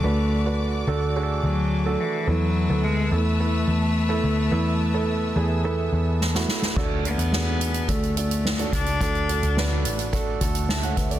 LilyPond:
<<
  \new Staff \with { instrumentName = "String section" } { \time 4/4 \key d \lydian \tempo 4 = 107 <fis' d'' d'''>1 | <b' e'' a'' e'''>1~ | <b' e'' a'' e'''>1 | r1 |
r1 | }
  \new Staff \with { instrumentName = "Grand piano" } { \time 4/4 \key d \lydian << { d4. r2 r8 | e4. r2 r8 | e4. r2 r8 | d4. r2 r8 |
d4. r4. <e'' a''>16 <cis'' fis''>16 <b' e''>16 <a' d''>16 | } \\ { <a d' fis' b'>8. <a d' fis' b'>8. <a d' fis' a'>8 <a d' fis' gis' a'>4 r16 <a d' fis' a'>8. | <a b e' a'>8. <a b e' a'>8. <a b e' a'>8 <a b e' a'>4 r16 <a b e' a'>8. | <a b e' a'>8. <a b e' a'>8. <a b e' gis'>8 <a b e' a'>4 r16 <a b e' fis'>8. | <a d' fis' a'>8 <a d' fis' a'>8 <a d' fis' gis'>4 <a d' fis' a'>8 <a d' fis' a'>8. <a d' fis' a'>8. |
<a d' fis' a'>8 <a d' fis' a'>8 <a d' fis' b'>4 <a d' fis' a'>8 <a d' fis' a'>8. r8. | } >> }
  \new Staff \with { instrumentName = "Cello" } { \time 4/4 \key d \lydian a4 r4. fis4 e8 | fis4 gis8 a2~ a8~ | a2. r4 | r8 b4. a8 a4 d'8~ |
d'4. r2 r8 | }
  \new Staff \with { instrumentName = "Picked electric bass" } { \clef bass \time 4/4 \key d \lydian d,4. d,4 d,4 r8 | e,8. d,8. e,4 e,4 d,8 | e,4. e,4 e,4 r8 | d,8. e,4~ e,16 d,4. cis,8 |
d,8. d,8. a,,4 d,4 d,8 | }
  \new DrumStaff \with { instrumentName = "Drums" } \drummode { \time 4/4 r4 r4 r4 r4 | r4 r4 r4 r4 | r4 r4 r4 sn16 sn16 sn16 sn16 | <cymc bd>8 hh16 hh16 sn8 hh16 hh16 <hh bd>16 hh16 hh16 hh16 sn16 hh16 <hh bd sn>16 hh16 |
<hh bd>16 hh16 hh16 hh16 sn8 hh16 hh16 <hh bd>8 <hh bd>16 hh16 sn16 hh16 <hh bd sn>16 hh16 | }
>>